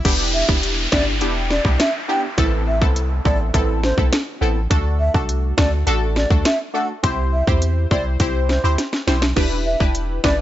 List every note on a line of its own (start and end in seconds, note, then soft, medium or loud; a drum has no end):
0.05 0.44 E1 loud
0.05 0.45 B3 loud
0.05 0.45 D4 medium
0.05 0.45 E4 medium
0.05 0.45 G4 loud
0.05 kick loud
0.05 closed hi-hat medium
0.05 crash loud
0.05 downlifter medium
0.34 0.46 E5 medium
0.48 0.88 E1 medium
0.48 0.89 B3 medium
0.48 0.89 D4 medium
0.48 0.89 E4 medium
0.48 0.89 G4 medium
0.48 kick loud
0.63 closed hi-hat medium
0.92 1.23 G1 medium
0.92 1.19 B3 medium
0.92 1.19 D4 medium
0.92 1.19 E4 medium
0.92 1.19 G4 medium
0.92 1.05 D5 medium
0.92 kick medium
0.92 snare loud
1.21 1.60 E1 loud
1.21 1.61 B3 medium
1.21 1.61 D4 medium
1.21 1.61 E4 medium
1.21 1.62 G4 loud
1.21 closed hi-hat medium
1.51 1.63 D5 medium
1.51 snare medium
1.65 1.78 B1 medium
1.65 1.82 B3 medium
1.65 1.83 D4 medium
1.65 1.83 E4 medium
1.65 1.83 G4 medium
1.65 kick medium
1.80 1.92 E5 medium
1.80 snare loud
1.80 closed hi-hat medium
2.08 2.26 B3 medium
2.08 2.26 D4 medium
2.08 2.26 E4 medium
2.08 2.26 G4 medium
2.08 2.21 G5 medium
2.38 2.83 A1 loud
2.38 2.78 B3 medium
2.38 2.78 C4 medium
2.38 2.78 E4 medium
2.38 2.78 A4 loud
2.38 kick loud
2.38 closed hi-hat medium
2.67 2.79 E5 medium
2.81 3.21 C2 medium
2.81 3.21 B3 medium
2.81 3.21 C4 medium
2.81 3.22 E4 medium
2.81 3.22 A4 medium
2.81 kick medium
2.96 closed hi-hat medium
3.25 3.51 A1 medium
3.25 3.52 B3 medium
3.25 3.52 C4 medium
3.25 3.52 E4 medium
3.25 3.52 A4 medium
3.25 3.38 D5 medium
3.25 kick medium
3.54 3.93 A1 loud
3.54 3.94 B3 loud
3.54 3.94 C4 medium
3.54 3.94 E4 medium
3.54 3.94 A4 loud
3.54 kick medium
3.54 closed hi-hat medium
3.83 3.96 C5 medium
3.83 snare medium
3.97 4.11 B1 medium
3.97 4.15 B3 medium
3.97 4.15 C4 medium
3.97 4.15 E4 medium
3.97 4.16 A4 medium
3.97 kick medium
4.13 snare loud
4.13 closed hi-hat medium
4.41 4.68 A1 loud
4.41 4.59 B3 medium
4.41 4.59 C4 medium
4.41 4.59 E4 medium
4.41 4.59 A4 medium
4.70 5.10 D2 loud
4.70 5.11 A3 medium
4.70 5.11 D4 medium
4.70 5.11 F#4 medium
4.70 5.11 A4 loud
4.70 kick loud
4.70 closed hi-hat medium
5.00 5.12 E5 medium
5.14 5.53 C2 medium
5.14 5.54 A3 medium
5.14 5.54 D4 medium
5.14 5.55 F#4 medium
5.14 5.55 A4 medium
5.14 kick medium
5.29 closed hi-hat medium
5.57 5.84 D2 medium
5.57 5.84 A3 medium
5.57 5.85 D4 medium
5.57 5.85 F#4 medium
5.57 5.85 A4 medium
5.57 5.70 D5 medium
5.57 kick medium
5.57 snare loud
5.86 6.26 A1 loud
5.86 6.27 A3 medium
5.86 6.27 D4 medium
5.86 6.27 F#4 medium
5.86 6.27 A4 loud
5.86 closed hi-hat medium
6.16 6.29 D5 medium
6.16 snare medium
6.30 6.44 D2 medium
6.30 6.48 A3 medium
6.30 6.48 D4 medium
6.30 6.48 F#4 medium
6.30 6.48 A4 medium
6.30 kick medium
6.45 6.58 E5 medium
6.45 snare loud
6.45 closed hi-hat medium
6.74 6.92 A3 medium
6.74 6.92 D4 medium
6.74 6.92 F#4 medium
6.74 6.92 A4 medium
6.74 6.87 F#5 medium
7.03 7.43 C2 loud
7.03 7.44 C4 loud
7.03 7.44 E4 medium
7.03 7.44 G4 medium
7.03 7.44 C5 loud
7.03 kick loud
7.03 closed hi-hat medium
7.33 7.45 E5 medium
7.47 7.86 E2 medium
7.47 7.87 C4 medium
7.47 7.87 E4 medium
7.47 7.88 G4 medium
7.47 7.88 C5 medium
7.47 kick medium
7.62 closed hi-hat medium
7.91 8.17 C2 medium
7.91 8.18 C4 medium
7.91 8.18 E4 medium
7.91 8.18 G4 medium
7.91 8.18 C5 medium
7.91 8.03 D5 medium
7.91 kick medium
8.20 8.59 C2 loud
8.20 8.60 C4 medium
8.20 8.61 E4 medium
8.20 8.61 G4 medium
8.20 8.61 C5 loud
8.20 kick medium
8.20 closed hi-hat medium
8.49 8.62 C5 medium
8.49 snare medium
8.64 8.77 D2 medium
8.64 8.81 C4 medium
8.64 8.81 E4 medium
8.64 8.82 G4 medium
8.64 8.82 C5 medium
8.78 snare medium
8.78 closed hi-hat medium
8.93 snare medium
9.07 9.34 B1 medium
9.07 9.25 C4 medium
9.07 9.25 E4 medium
9.07 9.25 G4 medium
9.07 9.25 C5 medium
9.07 snare medium
9.22 snare loud
9.36 9.76 E1 loud
9.36 9.77 D4 medium
9.36 9.77 E4 medium
9.36 9.77 G4 medium
9.36 9.77 B4 loud
9.36 kick loud
9.36 crash medium
9.66 9.78 E5 medium
9.80 10.19 E1 medium
9.80 10.20 D4 medium
9.80 10.20 E4 medium
9.80 10.20 G4 medium
9.80 10.21 B4 medium
9.80 kick medium
9.95 closed hi-hat medium
10.24 10.41 G1 loud
10.24 10.41 D4 medium
10.24 10.41 E4 medium
10.24 10.41 G4 medium
10.24 10.41 B4 medium
10.24 10.37 D5 medium
10.24 kick loud
10.24 snare loud